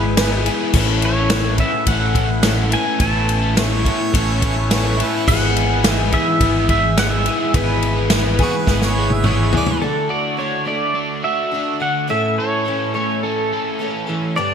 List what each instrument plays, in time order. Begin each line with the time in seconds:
Already playing: fingered electric bass G#1, twelve-string acoustic guitar G#3 B3 E4 G#4, overdriven electric guitar G#3, accordion B3 E4 G#4 B4, pedal steel guitar B4
0.06 muted overdriven electric guitar stroke
0.17 overdriven electric guitar G#3 B3 E4 B4, twelve-string acoustic guitar G#4, snare, ride
0.45 overdriven electric guitar G#3 B3 E4 B4, twelve-string acoustic guitar G#4, ride
0.60 overdriven electric guitar B3 E4 B4
0.74 fingered electric bass A1, overdriven electric guitar A2 A3 C#4 E4, twelve-string acoustic guitar B3, accordion C#4 E4 A4 B4, kick, crash
0.78 overdriven electric guitar A4
1.02 pedal steel guitar C#5, ride
1.17 overdriven electric guitar C#4 E4 A4
1.30 overdriven electric guitar A2 A3 C#4 E4, twelve-string acoustic guitar B3, snare, ride
1.34 overdriven electric guitar A4
1.58 overdriven electric guitar A3 C#4 E4 A4, twelve-string acoustic guitar B3, pedal steel guitar E5, kick, ride
1.73 muted overdriven electric guitar stroke
1.86 fingered electric bass A1, overdriven electric guitar A3 C#4 E4, twelve-string acoustic guitar B3, pedal steel guitar F#5, kick, ride
1.91 overdriven electric guitar A4
2.15 overdriven electric guitar A3 C#4 E4 A4, kick, ride
2.30 muted overdriven electric guitar stroke
2.43 overdriven electric guitar A2 A3 C#4 E4 A4, twelve-string acoustic guitar B3, snare, ride
2.70 overdriven electric guitar A3 C#4 E4 A4, twelve-string acoustic guitar B3, pedal steel guitar G#5, ride
2.85 overdriven electric guitar C#4 E4 A4
2.98 fingered electric bass A1, overdriven electric guitar A2 A3 C#4 E4 A4, twelve-string acoustic guitar B3, accordion C#4 E4 A4 B4, pedal steel guitar A5, kick, ride
3.29 ride
3.42 overdriven electric guitar C#4 E4 A4
3.56 overdriven electric guitar A2 A3 C#4 E4 A4, twelve-string acoustic guitar B3, harmonica C#5, snare, ride
3.85 overdriven electric guitar A3 C#4 E4 A4, twelve-string acoustic guitar B3, kick, ride
4.01 muted overdriven electric guitar stroke
4.14 fingered electric bass A1, overdriven electric guitar A3 C#4 E4 A4, twelve-string acoustic guitar B3, kick, ride
4.42 overdriven electric guitar A3 C#4 E4 A4, kick, ride
4.57 muted overdriven electric guitar stroke
4.70 overdriven electric guitar A2 A3 C#4 E4 A4, twelve-string acoustic guitar B3, harmonica C#5, snare, ride
4.97 overdriven electric guitar A3 C#4, twelve-string acoustic guitar B3 E4, ride
5.01 overdriven electric guitar E4 A4, harmonica B4
5.13 overdriven electric guitar C#4 E4 A4
5.27 fingered electric bass G#1, overdriven electric guitar G#2 E3 G#3 B3 E4 G#4, accordion B3 E4 G#4 B4, pedal steel guitar F#5, kick, crash
5.56 ride
5.69 overdriven electric guitar G#3 B3 E4 G#4
5.84 overdriven electric guitar G#2 E3 G#3 B3 E4 G#4, snare, ride
5.91 pedal steel guitar E5
6.12 overdriven electric guitar G#3 B3 E4, twelve-string acoustic guitar G#4, pedal steel guitar E5, kick, ride
6.16 overdriven electric guitar G#4
6.28 muted overdriven electric guitar stroke
6.41 fingered electric bass G#1, overdriven electric guitar G#3 B3 E4, kick, ride
6.45 overdriven electric guitar G#4
6.69 overdriven electric guitar G#3 B3 E4, pedal steel guitar E5, kick, ride
6.73 overdriven electric guitar G#4
6.84 muted overdriven electric guitar stroke
6.97 overdriven electric guitar G#2 E3 G#3 B3 E4 G#4, pedal steel guitar F#5, snare, ride
7.10 pedal steel guitar E5
7.26 overdriven electric guitar G#3 B3 E4 G#4, ride
7.39 overdriven electric guitar G#3 B3 E4 G#4
7.52 fingered electric bass G#1, overdriven electric guitar G#2 E3 G#3 B3 E4, accordion B3 E4 G#4 B4, pedal steel guitar B4, kick, ride
7.56 overdriven electric guitar G#4
7.82 ride
7.95 overdriven electric guitar G#3 B3 E4 G#4
8.09 overdriven electric guitar G#2 E3 G#3 B3 E4 G#4, snare, ride
8.38 overdriven electric guitar G#3 B3 E4 G#4, kick, ride
8.42 harmonica F#4
8.55 harmonica B4, muted overdriven electric guitar stroke
8.67 fingered electric bass G#1, overdriven electric guitar G#3 B3 E4 G#4, kick, snare
8.82 snare
8.86 harmonica C#5
8.95 overdriven electric guitar G#3 B3 E4 G#4
9.10 harmonica E5, muted overdriven electric guitar stroke, high tom
9.23 overdriven electric guitar G#2 E3 G#3 B3 E4 G#4, mid tom
9.28 harmonica C#5
9.52 overdriven electric guitar G#3 B3 E4 G#4, floor tom
9.56 harmonica D5
9.66 overdriven electric guitar B3 E4 G#4, floor tom
9.70 overdriven electric guitar G#3
9.81 overdriven electric guitar D3, twelve-string acoustic guitar A3 D4 F#4, accordion D4 F#4 A4 D5, pedal steel guitar A4
10.09 overdriven electric guitar F#4, pedal steel guitar D5
10.37 twelve-string acoustic guitar D3 A3 F#4, overdriven electric guitar D4, pedal steel guitar C#5
10.65 overdriven electric guitar A3, twelve-string acoustic guitar D4 F#4, pedal steel guitar D5
10.94 overdriven electric guitar D4
11.23 overdriven electric guitar F#4, pedal steel guitar E5
11.51 twelve-string acoustic guitar D3 A3 F#4, overdriven electric guitar D4
11.80 overdriven electric guitar D3, twelve-string acoustic guitar A3 D4 F#4, pedal steel guitar F#5
12.08 overdriven electric guitar A2, twelve-string acoustic guitar E3 A3 C#4 A4, accordion C#4 E4 A4 C#5, pedal steel guitar E5
12.38 overdriven electric guitar A4, pedal steel guitar C#5
12.65 twelve-string acoustic guitar E3 A3 A4, overdriven electric guitar C#4
12.94 overdriven electric guitar A3, twelve-string acoustic guitar C#4 A4, pedal steel guitar C#5
13.23 overdriven electric guitar C#4, pedal steel guitar A4
13.53 overdriven electric guitar A4
13.79 twelve-string acoustic guitar E3 A3 A4, overdriven electric guitar C#4
14.07 overdriven electric guitar E3, twelve-string acoustic guitar A3 C#4 A4
14.36 overdriven electric guitar G2, twelve-string acoustic guitar D3 G3 B3 D4 G4, accordion D4 G4 B4 D5, pedal steel guitar D5